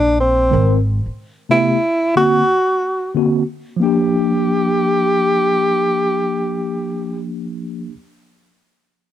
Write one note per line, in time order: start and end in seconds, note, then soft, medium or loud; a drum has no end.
0.00 0.49 A#1 medium
0.00 0.19 D4 medium
0.20 0.82 C4 medium
0.50 1.03 G#1 medium
0.50 0.77 D#3 medium
0.50 0.77 G#3 medium
0.50 0.77 C4 medium
0.50 0.78 A#4 medium
1.06 muted upright bass stroke soft
1.49 1.76 C3 medium
1.49 1.76 A3 medium
1.49 1.76 B3 medium
1.49 2.13 E4 medium
1.49 1.77 G4 medium
2.16 2.42 D3 medium
2.16 2.42 A#3 medium
2.16 2.42 C4 medium
2.16 3.12 F#4 loud
2.16 2.43 F#4 medium
3.15 3.41 D3 medium
3.15 3.41 A#3 medium
3.15 3.41 C4 medium
3.15 3.42 F#4 medium
3.76 7.86 F3 medium
3.76 7.90 A#3 medium
3.82 7.92 D4 medium
3.82 7.22 G4 medium
3.82 7.93 G4 medium